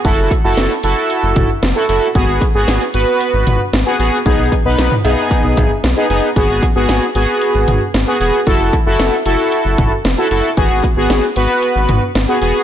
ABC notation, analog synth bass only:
X:1
M:4/4
L:1/16
Q:1/4=114
K:G#phr
V:1 name="Analog synth bass" clef=bass
F,,, F,,, z F,,, F,,, z F,,, z2 F,,, F,,, z F,,, z F,,, z | G,,, G,,, z G,,, G,,, z G,,, z2 G,,, G,,, z G,,, z A,,, z | B,,, B,,, z B,,, B,,, z B,,, z2 B,,, B,,, z B,,, z F,,, z | G,,, G,,, z G,,, G,,, z G,,, z2 G,,, G,,, z G,,, z E,,, z |
F,,, F,,, z F,,, F,,, z F,,, z2 F,,, F,,, z F,,, z F,,, z | G,,, G,,, z G,,, G,,, z G,,, z2 G,,, G,,, z G,,, z E,,, z |]